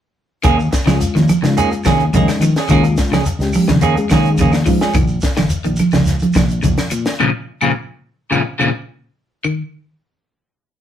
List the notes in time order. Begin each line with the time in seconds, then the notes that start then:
0.43 D#2 D#3 A#3 C#4 G#4, kick, closed hi-hat, low conga, claves, shekere
0.59 muted clean electric guitar stroke, shekere
0.71 muted clean electric guitar stroke, kick, snare, closed hi-hat, shekere
0.86 C#2 C#3 G#3 C#4 F4 G#4, snare, high conga, claves, shekere
1.01 muted clean electric guitar stroke, closed hi-hat, shekere
1.15 D#2 D#3, snare, closed hi-hat, high conga, shekere
1.28 muted clean electric guitar stroke, closed hi-hat, high conga, claves, shekere
1.42 G#2 C#3 G#3 C#4 F4, muted clean electric guitar stroke, snare, closed hi-hat, shekere
1.57 A#3 C#4 G#4, closed hi-hat, shekere
1.71 muted clean electric guitar stroke, closed hi-hat, shekere
1.84 D#2 C3 A#3 C#4 G#4, kick, snare, closed hi-hat, high conga, claves, shekere
2.00 closed hi-hat, shekere
2.13 D#2 C#3 G#3 A#3 C#4 D#4 G#4, kick, closed hi-hat, high conga, low conga, shekere
2.28 muted clean electric guitar stroke, snare, closed hi-hat, claves, shekere
2.40 D#3 F3, muted clean electric guitar stroke, closed hi-hat, shekere
2.55 G#4, muted fingered electric bass stroke, snare, closed hi-hat, shekere
2.59 C#4
2.68 D#2 D#3 G#3 A#3 C#4 F4 G#4, kick, snare, closed hi-hat, low conga, claves, shekere
2.84 muted clean electric guitar stroke, closed hi-hat, shekere
2.97 muted clean electric guitar stroke, kick, snare, closed hi-hat, shekere
3.11 C#2 C#3 C#4 G#4, snare, closed hi-hat, high conga, claves, shekere
3.25 muted fingered electric bass stroke, muted clean electric guitar stroke, closed hi-hat, shekere
3.39 C#2 G#3 C#4 G4, snare, closed hi-hat, shekere
3.53 muted clean electric guitar stroke, open hi-hat, high conga, claves, shekere
3.68 D#2 C#3, muted clean electric guitar stroke, snare, closed hi-hat, high conga, low conga, shekere
3.81 A#3 C#4 G#4, closed hi-hat, shekere
3.97 G#3 C#4 G#4, muted clean electric guitar stroke, closed hi-hat, shekere
4.09 C3 D#3 A#3 C#4 G#4, kick, snare, closed hi-hat, high conga, claves, shekere
4.24 closed hi-hat, shekere
4.37 D#2 C#3 A#3 C#4, kick, closed hi-hat, high conga, low conga, shekere
4.41 G#4
4.52 muted clean electric guitar stroke, snare, claves, shekere
4.66 G#2 F3 G#3 C#4 F4, muted clean electric guitar stroke, kick, open hi-hat, high conga, shekere
4.81 C#4 G#4, snare, closed hi-hat, shekere
4.93 A#1 D#3, kick, closed hi-hat, low conga, claves, shekere
5.08 shekere
5.21 kick, snare, closed hi-hat, shekere
5.37 G#1 C#3, snare, high conga, claves, shekere
5.49 closed hi-hat, shekere
5.64 A#1 D#3, closed hi-hat, shekere
5.76 closed hi-hat, high conga, claves, shekere
5.91 C#2 C#3, snare, closed hi-hat, high conga, low conga, shekere
6.05 snare, closed hi-hat, shekere
6.19 closed hi-hat, high conga, shekere
6.33 A#1 C3, kick, snare, closed hi-hat, high conga, claves, shekere
6.49 closed hi-hat, shekere
6.63 A#1 C#3, kick, closed hi-hat, high conga, low conga, shekere
6.78 snare, closed hi-hat, claves, shekere
6.90 A#2, muted clean electric guitar stroke, closed hi-hat, shekere
7.05 muted fingered electric bass stroke, snare, closed hi-hat, shekere
7.20 A#2 C#3 F3, claves
7.61 A#2 C#3 F3, claves
8.31 A#2 C#3 F3, claves
8.59 A#2 C#3 F3, claves
9.44 D#3, claves